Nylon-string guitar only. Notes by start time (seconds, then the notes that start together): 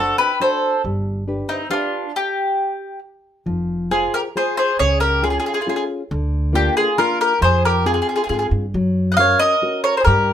Already playing: D4 F#4 C5
0.40 D4 F#4 C5
0.85 G3
1.28 D4 G4 B4
1.70 D4 G4 B4
3.46 F3
3.91 F4 G#4 C5
4.36 F4 G#4 C5
4.80 C#3
5.23 C#4 F4 G#4
5.67 C#4 F4 G#4
6.11 D3
6.53 A#3 D4 F4
6.98 A#3 D4 F4
7.41 F3
7.85 C4 F4 G#4
8.30 C4 F4 G#4
8.75 F#3
9.19 C#4 F#4 A#4
9.62 C#4 F#4 A#4
10.07 G3